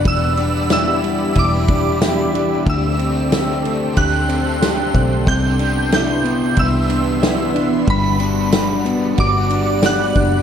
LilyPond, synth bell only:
\new Staff \with { instrumentName = "Synth bell" } { \time 4/4 \key g \major \tempo 4 = 92 e'''4 e'''4 d'''4. r8 | e'''2 fis'''2 | g'''4 g'''4 e'''4. r8 | b''4. r8 d'''4 fis'''4 | }